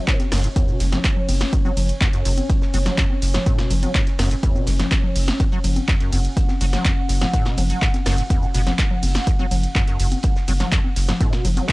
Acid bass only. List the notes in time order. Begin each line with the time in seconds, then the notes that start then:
0.08 A2
0.32 F#2
0.44 A2
0.56 E2
0.68 B2
0.80 A3
0.92 F#1
1.53 F#2
1.65 F#3
2.01 F#2
2.13 F#2
2.25 F#2
2.74 F#3
2.86 F#3
2.98 F#2
3.34 A2
3.46 A2
3.58 B2
3.71 F#3
3.83 F#3
3.95 A2
4.19 F#2
4.31 A2
4.43 E2
4.55 B2
4.67 A3
4.79 F#1
5.40 F#2
5.52 F#3
5.88 F#2
6.00 F#2
6.12 F#2
6.61 F#3
6.73 F#3
6.85 F#2
7.21 A2
7.33 A2
7.46 B2
7.58 F#3
7.70 F#3
7.82 A2
8.06 F#2
8.18 A2
8.30 E2
8.42 B2
8.54 B2
8.67 F#1
9.27 F#2
9.39 F#3
9.75 F#2
9.88 F#2
10.00 F#2
10.48 F#3
10.60 F#3
10.72 F#2
11.09 A2
11.21 A2
11.33 B2
11.45 F#3
11.57 F#3
11.69 A2